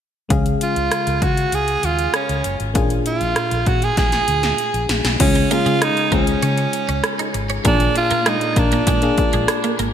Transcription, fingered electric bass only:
0.30 C#2
0.76 C#2
1.07 C#2
1.22 C#3
1.53 C#2
1.84 D#2
2.29 C#2
2.45 F#1
2.60 G#1
2.75 A#1
3.21 A#1
3.52 A#1
3.67 A#2
3.97 A#1
4.28 D2
4.74 A#1
4.89 A#1
5.05 B1
5.20 C#2
5.66 C#3
6.12 C#2
6.43 C#3
6.89 C#2
7.35 G#1
7.65 A#1
8.11 A#2
8.57 A#1
8.87 A#2
9.34 A#1
9.79 G#1

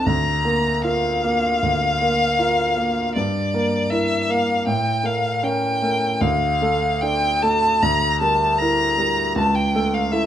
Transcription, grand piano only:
0.06 D2
0.45 A#3 A#4
0.84 F4 A#4
1.24 A#3 A#4
1.63 D2
2.01 A#3 A#4
2.39 F4 A#4
2.77 A#3 A#4
3.16 G2
3.54 A#3 A#4
3.91 E4 A#4
4.29 A#3 A#4
4.67 A2
5.03 A3 A#4
5.43 C#4 A#4
5.82 A3 A#4
6.21 D2
6.62 A3 A4
7.02 D4 A4
7.43 A3 A4
7.82 D2
8.21 G3 A#4
8.61 E4 A#4
8.98 G3 A#4
9.36 C#2
9.75 A3 A4
10.12 E4 A4

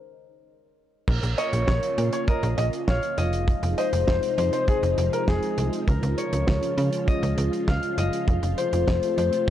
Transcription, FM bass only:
1.08 A#1
1.23 A#1
1.53 A#1
1.68 A#1
1.98 A#2
2.43 A#1
2.58 A#1
2.88 A#1
3.18 F1
3.63 F1
3.93 F1
4.08 F1
4.38 F2
4.83 F1
4.98 F1
5.28 F1
5.58 C2
5.88 C#2
6.03 C#2
6.33 C#2
6.48 C#2
6.78 C#3
7.23 C#2
7.38 C#2
7.68 C#2
7.98 F#1
8.28 F1
8.43 F1
8.73 F1
8.88 F1
9.18 F2

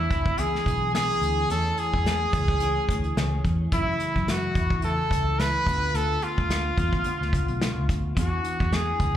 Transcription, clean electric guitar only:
Already playing: E3 B3 D4
0.10 B3 D4 G#4
0.38 E3 B3 D4 G#4
0.93 E3 B3 D4 G#4
1.49 E3 A3 C#4 G#4
2.33 A3 C#4 G#4
2.60 E3 A3 C#4 G#4
3.17 E3 A3 C#4 G#4
3.72 F#2 C#3 E3 A3 E4
4.55 E3 A3 E4
4.83 C#3 E3 A3 E4
5.38 C#3 E3 A3 E4
5.66 D3 A3 B3 F4
6.78 A3 B3 F4
7.04 D3 A3 B3 F4
7.60 D3 A3 B3 F4
8.15 E3 B3 D4
8.19 G#4

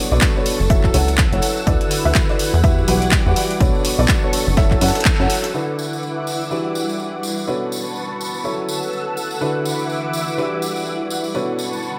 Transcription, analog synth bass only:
0.12 B1
0.60 F#1
0.94 C#2
1.33 F#1
1.67 D2
2.05 D2
2.54 E2
2.88 B1
3.26 E2
3.60 B1
3.99 B1
4.47 F#1
4.82 F#2
5.20 F#2

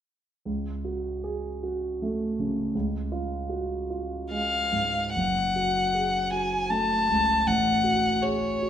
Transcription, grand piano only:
0.45 C#2
0.85 F#4
1.24 G#4
1.63 F#4
2.02 A3
2.39 C#3
2.75 C#2
3.12 F4
3.49 F#4
3.90 F4
4.31 G#3
4.72 G#2
5.16 F#1
5.56 F#4
5.95 G#4
6.32 F#4
6.70 A3
7.09 C#2
7.47 A1
7.84 F#4
8.23 G#4
8.62 F#4

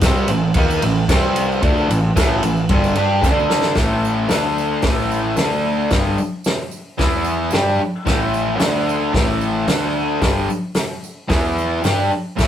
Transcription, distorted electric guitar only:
0.02 C3 G3 C4
0.29 A2 E3
0.56 D#3 A#3 D#4
0.83 A2 E3
1.08 C3 G3 C4
1.62 D3 A3 D4
1.89 A2 E3
2.15 A2 E3 A3
2.43 A2 E3
2.70 G2 D3 G3
2.96 G3 D4 G4
3.23 D3 A3 D4
3.76 A2 E3 A3
4.29 D3 A3 D4
4.83 A2 E3 A3
5.37 D3 A3 D4
5.90 G2 D3 G3
6.98 E3 B3 E4
7.52 G3 D4 G4
7.80 muted distorted electric guitar stroke
8.05 A2 E3 A3
8.59 D3 A3 D4
9.13 A2 E3 A3
9.68 D3 A3 D4
10.20 G2 D3 G3
11.28 E3 B3 E4
11.83 G3 D4 G4
12.10 muted distorted electric guitar stroke
12.37 A2 E3 A3

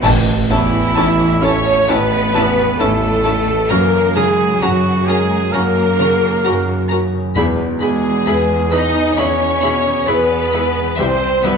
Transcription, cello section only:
0.50 E3
1.42 C#4
1.88 B3
2.79 A3
3.70 A#3
4.15 G#3
4.61 F#3
5.08 G#3
5.53 A#3
7.81 G#3
8.72 D#4
9.17 C#4
10.08 B3
10.98 C4
11.44 B3

